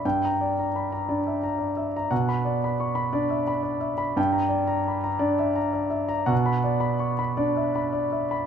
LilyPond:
<<
  \new Staff \with { instrumentName = "Grand piano" } { \time 6/8 \key b \minor \tempo 4. = 57 g''16 bes''16 d''16 bes''16 b''16 bes''16 d''16 e''16 bes''16 d''16 e''16 bes''16 | fis''16 b''16 d''16 b''16 cis'''16 b''16 d''16 e''16 b''16 d''16 e''16 b''16 | g''16 bes''16 d''16 bes''16 b''16 bes''16 d''16 e''16 bes''16 d''16 e''16 bes''16 | fis''16 b''16 d''16 b''16 cis'''16 b''16 d''16 e''16 b''16 d''16 e''16 b''16 | }
  \new Staff \with { instrumentName = "Grand piano" } { \clef bass \time 6/8 \key b \minor g,4. d'4. | b,4. d'4. | g,4. d'4. | b,4. d'4. | }
>>